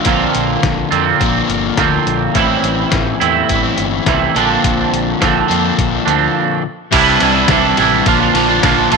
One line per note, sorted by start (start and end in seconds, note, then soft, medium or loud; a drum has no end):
0.05 0.26 A#1 medium
0.05 0.90 A#2 medium
0.05 1.18 A#2 medium
0.05 0.90 D3 medium
0.05 1.19 D3 medium
0.05 1.20 F3 medium
0.05 0.90 A#3 loud
0.05 1.20 A#3 medium
0.05 0.91 C4 loud
0.05 0.89 F4 loud
0.05 kick loud
0.05 closed hi-hat medium
0.09 1.20 D4 medium
0.35 0.55 A#1 medium
0.35 closed hi-hat medium
0.63 0.83 A#1 medium
0.63 kick loud
0.63 snare loud
0.63 closed hi-hat medium
0.91 1.12 F2 medium
0.91 1.76 A#2 medium
0.91 1.76 D3 medium
0.91 1.76 A#3 medium
0.91 1.79 C4 medium
0.91 1.76 F4 medium
0.91 closed hi-hat medium
1.20 1.41 A#1 medium
1.20 2.33 A#2 medium
1.20 2.33 D3 medium
1.20 2.34 F3 medium
1.20 2.34 A#3 medium
1.20 2.35 D4 medium
1.20 kick loud
1.20 closed hi-hat medium
1.49 1.69 G1 medium
1.49 closed hi-hat medium
1.77 1.98 D2 medium
1.77 2.33 A#2 medium
1.77 2.33 D3 medium
1.77 2.34 A#3 medium
1.77 2.36 C4 medium
1.77 2.34 F4 medium
1.77 kick loud
1.77 snare loud
1.77 closed hi-hat medium
2.07 2.27 A#1 medium
2.07 closed hi-hat medium
2.34 2.55 A1 loud
2.34 3.19 A2 loud
2.34 3.48 A2 medium
2.34 3.19 E3 medium
2.34 3.48 E3 medium
2.34 3.20 G3 medium
2.34 3.49 A3 medium
2.34 3.21 C4 medium
2.34 3.51 C4 medium
2.34 3.19 E4 medium
2.34 3.50 E4 medium
2.34 kick loud
2.34 closed hi-hat medium
2.63 2.84 A1 medium
2.63 closed hi-hat medium
2.92 3.12 A1 medium
2.92 kick loud
2.92 snare loud
2.92 closed hi-hat medium
3.20 3.41 E2 medium
3.20 4.05 A2 medium
3.20 4.06 E3 medium
3.20 4.05 G3 medium
3.20 4.08 C4 medium
3.20 4.05 E4 medium
3.20 closed hi-hat medium
3.49 3.70 A1 medium
3.49 4.33 A2 medium
3.49 4.34 E3 medium
3.49 4.34 A3 medium
3.49 4.37 C4 medium
3.49 4.35 E4 medium
3.49 kick loud
3.49 closed hi-hat medium
3.78 3.98 G1 medium
3.78 closed hi-hat medium
4.06 4.27 C2 medium
4.06 4.34 A2 medium
4.06 4.34 E3 medium
4.06 4.34 G3 medium
4.06 4.37 C4 medium
4.06 4.35 E4 medium
4.06 kick loud
4.06 snare loud
4.06 closed hi-hat medium
4.34 4.55 A#1 medium
4.34 5.48 A#2 medium
4.34 5.19 A#2 medium
4.34 5.48 D3 medium
4.34 5.20 D3 medium
4.34 5.48 F3 medium
4.34 5.20 F3 medium
4.34 5.48 A#3 medium
4.34 5.20 C4 loud
4.34 5.21 D4 medium
4.34 5.47 F4 loud
4.34 closed hi-hat medium
4.64 4.84 A#1 loud
4.64 kick loud
4.64 closed hi-hat medium
4.93 5.13 A#1 medium
4.93 closed hi-hat medium
5.20 5.42 A#1 medium
5.20 6.05 A#2 medium
5.20 6.05 D3 medium
5.20 6.06 F3 medium
5.20 6.05 C4 medium
5.20 6.04 D4 medium
5.20 kick loud
5.20 snare loud
5.20 closed hi-hat medium
5.48 5.70 F2 medium
5.48 6.63 A#2 medium
5.48 6.63 D3 medium
5.48 6.62 F3 medium
5.48 6.62 A#3 medium
5.48 6.62 F4 medium
5.48 closed hi-hat medium
5.78 5.98 A#1 medium
5.78 kick loud
5.78 closed hi-hat medium
6.05 6.27 D2 medium
6.05 6.63 A#2 medium
6.05 6.63 D3 medium
6.05 6.63 F3 medium
6.05 6.62 C4 medium
6.05 6.62 D4 medium
6.05 closed hi-hat medium
6.91 7.18 C2 medium
6.91 7.19 C3 medium
6.91 7.48 C3 medium
6.91 7.19 E3 medium
6.91 7.20 G3 medium
6.91 7.20 G3 loud
6.91 7.21 C4 medium
6.91 7.21 D4 loud
6.91 7.22 E4 loud
6.91 7.22 E4 medium
6.91 kick loud
6.91 crash loud
6.91 ride medium
7.20 7.46 C2 medium
7.20 7.47 C3 medium
7.20 7.48 E3 medium
7.20 7.37 G3 medium
7.20 7.36 G3 medium
7.20 7.35 C4 medium
7.20 7.35 D4 medium
7.20 7.33 E4 medium
7.20 7.34 E4 loud
7.20 ride medium
7.34 7.49 G3 medium
7.34 7.48 G3 medium
7.34 7.49 C4 medium
7.34 7.49 D4 medium
7.34 7.50 E4 medium
7.48 7.75 C2 loud
7.48 7.77 C3 medium
7.48 8.04 C3 medium
7.48 7.76 E3 medium
7.48 7.65 G3 medium
7.48 7.77 G3 loud
7.48 7.64 C4 medium
7.48 7.78 D4 loud
7.48 7.62 E4 loud
7.48 7.78 E4 medium
7.48 kick loud
7.48 snare loud
7.48 ride loud
7.64 7.78 G3 medium
7.64 7.79 C4 medium
7.64 7.80 E4 medium
7.77 8.03 A1 medium
7.77 8.05 C3 medium
7.77 8.04 E3 medium
7.77 8.05 G3 medium
7.77 8.06 C4 medium
7.77 8.05 D4 medium
7.77 8.06 E4 medium
7.77 ride medium
7.92 snare soft
8.05 8.32 A#1 medium
8.05 8.49 A#2 medium
8.05 8.33 D3 loud
8.05 8.33 F3 medium
8.05 8.22 F3 loud
8.05 8.20 A#3 loud
8.05 8.20 D4 loud
8.05 8.19 F4 loud
8.05 kick loud
8.05 ride medium
8.20 8.34 F3 medium
8.20 8.35 A#3 medium
8.20 8.35 D4 medium
8.20 8.36 F4 medium
8.20 8.35 F4 medium
8.34 8.60 A#1 medium
8.34 8.63 D3 medium
8.34 8.62 F3 medium
8.34 8.51 F3 medium
8.34 8.50 A#3 medium
8.34 8.48 D4 medium
8.34 8.47 F4 medium
8.34 8.48 F4 medium
8.34 snare soft
8.34 ride medium
8.48 8.64 F3 medium
8.48 8.64 A#3 medium
8.48 8.63 D4 medium
8.48 8.63 F4 medium
8.48 8.65 F4 medium
8.62 8.89 A#1 medium
8.62 8.97 A#2 loud
8.62 8.97 A#2 medium
8.62 8.91 D3 loud
8.62 8.89 F3 medium
8.62 8.91 F3 medium
8.62 8.93 A#3 medium
8.62 8.91 D4 loud
8.62 8.92 F4 loud
8.62 kick loud
8.62 snare loud
8.62 ride loud
8.66 8.93 F4 loud
8.91 8.97 A#1 medium
8.91 8.97 D3 medium
8.91 8.97 F3 medium
8.91 8.97 A3 medium
8.91 8.97 A#3 medium
8.91 8.97 D4 medium
8.91 8.97 F4 medium
8.91 ride medium